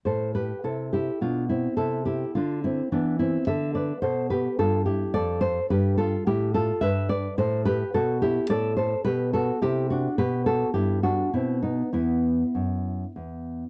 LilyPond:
\new Staff \with { instrumentName = "Nylon-string guitar" } { \time 3/4 \key a \minor \tempo 4 = 107 << { <a' c''>8 <g' b'>8 <e' a'>8 <e' g'>8 <d' f'>8 <c' e'>8 | <e' a'>8 <e' g'>8 <d' f'>8 <c' e'>8 <b d'>8 <c' e'>8 | <a' e''>8 <b' d''>8 <a' c''>8 <g' b'>8 <f' a'>8 <e' g'>8 | <a' d''>8 <a' c''>8 <g' b'>8 <f' a'>8 <e' g'>8 <f' a'>8 |
\key e \minor <b' e''>8 <b' d''>8 <a' c''>8 <g' b'>8 <fis' a'>8 <e' g'>8 | <a' d''>8 <a' c''>8 <g' b'>8 <fis' a'>8 <e' g'>8 <d' fis'>8 | <g' b'>8 <fis' a'>8 <e' g'>8 <d' fis'>8 <c' e'>8 <b dis'>8 | <b e'>2 r4 | } \\ { a,4 c4 b,4 | c4 d4 e4 | d4 b,4 g,4 | f,4 g,4 a,4 |
g,4 a,4 b,4 | a,4 b,4 c4 | b,4 g,4 b,4 | e,4 fis,4 e,4 | } >> }